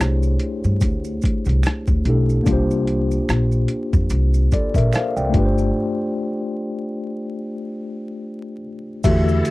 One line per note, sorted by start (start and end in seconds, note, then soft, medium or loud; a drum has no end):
0.00 0.35 C2 medium
0.00 2.00 A3 medium
0.00 2.01 D4 medium
0.00 2.02 E4 medium
0.00 2.03 G4 medium
0.00 2.48 G#4 soft
0.00 2.08 C5 medium
0.00 2.49 C#5 soft
0.00 finger snap medium
0.00 cross-stick loud
0.00 closed hi-hat medium
0.00 maracas medium
0.23 maracas soft
0.39 closed hi-hat medium
0.64 0.80 G2 medium
0.64 maracas soft
0.81 1.17 D2 medium
0.81 kick medium
0.81 closed hi-hat medium
0.81 maracas medium
1.04 maracas soft
1.22 kick medium
1.22 closed hi-hat medium
1.22 maracas soft
1.45 1.62 C2 medium
1.45 closed hi-hat soft
1.45 maracas soft
1.63 finger snap medium
1.63 cross-stick loud
1.63 closed hi-hat medium
1.63 maracas medium
1.87 2.03 D2 medium
1.87 kick medium
1.87 maracas soft
2.05 2.41 B1 medium
2.05 2.46 A3 soft
2.05 2.45 D4 soft
2.05 2.48 E4 soft
2.05 2.48 G4 soft
2.05 closed hi-hat medium
2.10 2.49 A4 medium
2.29 maracas soft
2.43 3.17 C2 medium
2.43 5.29 A#3 medium
2.43 5.30 D4 medium
2.43 kick loud
2.43 closed hi-hat medium
2.43 maracas medium
2.49 5.31 F4 medium
2.49 5.32 G4 medium
2.53 4.51 C5 medium
2.71 maracas soft
2.87 closed hi-hat medium
3.11 maracas soft
3.29 3.64 A#1 medium
3.29 finger snap medium
3.29 cross-stick loud
3.29 closed hi-hat medium
3.29 maracas medium
3.52 maracas soft
3.68 closed hi-hat medium
3.93 4.09 F2 medium
3.93 kick medium
3.93 maracas soft
4.10 4.46 C2 loud
4.10 closed hi-hat medium
4.10 maracas medium
4.34 maracas soft
4.52 4.75 A4 medium
4.52 4.75 D5 medium
4.52 kick medium
4.52 closed hi-hat medium
4.52 maracas soft
4.74 4.90 A#1 medium
4.74 4.93 A#4 medium
4.74 4.93 E5 medium
4.74 kick medium
4.74 closed hi-hat medium
4.74 maracas soft
4.93 5.16 C5 medium
4.93 5.16 F5 medium
4.93 finger snap medium
4.93 cross-stick loud
4.93 closed hi-hat medium
4.93 maracas medium
5.16 5.32 C2 medium
5.16 5.56 D5 soft
5.16 5.55 G5 medium
5.16 maracas soft
5.30 8.57 A3 medium
5.30 8.58 D4 medium
5.34 5.70 G1 medium
5.34 8.59 F4 medium
5.34 8.60 G4 medium
5.34 kick loud
5.34 closed hi-hat medium
5.39 5.44 B4 medium
5.45 8.64 C5 medium
5.58 maracas soft
9.04 9.40 E2 loud
9.04 9.51 D3 medium
9.04 9.51 E3 medium
9.04 9.51 A3 medium
9.04 9.51 E4 medium
9.04 9.51 F#4 medium
9.04 9.51 G4 medium
9.04 9.51 A4 medium
9.04 9.51 E5 medium
9.04 kick loud
9.04 closed hi-hat medium
9.04 crash loud
9.04 maracas medium
9.29 maracas soft
9.45 closed hi-hat medium
9.45 maracas medium